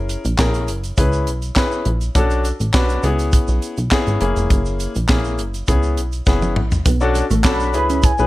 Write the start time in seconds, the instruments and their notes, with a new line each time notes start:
Already playing: analog synth bass F#1, grand piano C#4 E4 G#4 A#4
0.09 closed hi-hat, shaker
0.25 analog synth bass A#1, closed hi-hat, shaker
0.38 analog synth bass A#1, grand piano C#4 E4 G#4 A#4, kick, snare, clap, shaker
0.54 closed hi-hat, shaker
0.68 analog synth bass F#1, closed hi-hat, shaker
0.84 closed hi-hat, shaker
0.97 analog synth bass C#2, grand piano C#4 E4 G#4 B4, kick, closed hi-hat, shaker
1.13 shaker
1.27 analog synth bass B1, closed hi-hat, shaker
1.42 closed hi-hat, shaker
1.56 grand piano C#4 E4 G#4 B4, kick, snare, clap, shaker
1.72 shaker
1.85 analog synth bass A#1, closed hi-hat
2.01 closed hi-hat, shaker
2.15 analog synth bass B1, grand piano C#4 D4 F#4 A4, kick, closed hi-hat, shaker
2.30 closed hi-hat, shaker
2.45 closed hi-hat, shaker
2.60 analog synth bass A1, closed hi-hat, shaker
2.73 analog synth bass B1, grand piano C#4 D4 F#4 B4, kick, snare, clap, shaker
2.89 closed hi-hat, shaker
3.03 analog synth bass C#2, grand piano B3 C#4 E4 G#4, closed hi-hat, shaker
3.19 closed hi-hat, shaker
3.32 kick, closed hi-hat, shaker
3.48 analog synth bass B1, shaker
3.62 closed hi-hat, shaker
3.77 analog synth bass B1, closed hi-hat, shaker
3.91 grand piano B3 C#4 E4 G#4, kick, snare, clap, shaker
4.07 analog synth bass G#1, closed hi-hat, shaker
4.21 analog synth bass F#1, grand piano A#3 C#4 E4 G#4, closed hi-hat
4.36 analog synth bass F1, closed hi-hat, shaker
4.50 analog synth bass F#1, kick, closed hi-hat, shaker
4.66 shaker
4.80 closed hi-hat, shaker
4.95 analog synth bass A#1, closed hi-hat, shaker
5.09 analog synth bass A#1, grand piano A#3 C#4 E4 G#4, kick, snare, clap, shaker
5.24 shaker
5.38 analog synth bass F#1, closed hi-hat, shaker
5.54 closed hi-hat, shaker
5.67 analog synth bass C#2, grand piano B3 C#4 E4 G#4, kick, closed hi-hat, shaker
5.83 shaker
5.97 analog synth bass B1, closed hi-hat, shaker
6.12 closed hi-hat, shaker
6.26 analog synth bass F#1, grand piano B3 C#4 E4 G#4, kick, snare, shaker
6.42 high tom, shaker
6.56 analog synth bass A#1, mid tom
6.72 floor tom, shaker
6.86 analog synth bass B1, clean electric guitar B3, kick, closed hi-hat, shaker
7.01 grand piano C#4 D4 F#4 A4, shaker
7.15 muted clean electric guitar stroke, closed hi-hat, shaker
7.31 analog synth bass A1, clean electric guitar A3, closed hi-hat, shaker
7.44 analog synth bass B1, grand piano C#4 D4 F#4 A4, clean electric guitar D4, soft synth lead B5, kick, snare, clap, shaker
7.60 muted clean electric guitar stroke, shaker
7.73 analog synth bass C#2, grand piano C#4 E4 G#4 B4, closed hi-hat, shaker
7.90 clean electric guitar C#4, closed hi-hat, shaker
8.03 soft synth lead G#5, muted clean electric guitar stroke, kick, closed hi-hat, shaker
8.18 analog synth bass B1, grand piano C#4 E4 G#4 B4, shaker